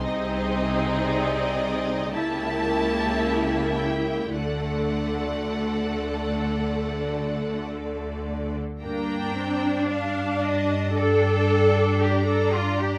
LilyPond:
<<
  \new Staff \with { instrumentName = "Violin section" } { \time 4/4 \key g \minor \tempo 4 = 55 ees''2 a''4. g''8 | fis''2. r4 | bes''4 a''4 g''4 bes''4 | }
  \new Staff \with { instrumentName = "Violin section" } { \time 4/4 \key g \minor << { c''4 d''4 e''2 | d''1 | g''4 f''8 ees''8 d''4 d''4 | } \\ { aes'2 g'2 | a'1 | r1 | } >> }
  \new Staff \with { instrumentName = "Cello section" } { \time 4/4 \key g \minor c2 cis2 | d1 | d'2 a'4 g'16 a'16 f'16 g'16 | }
  \new Staff \with { instrumentName = "Viola section" } { \time 4/4 \key g \minor <c' ees'>2 <ais e'>2 | <a a'>1 | bes8 c'8 d'4 d'2 | }
  \new Staff \with { instrumentName = "Double bass section" } { \clef bass \time 4/4 \key g \minor c,2 cis,2 | d,1 | g,1 | }
>>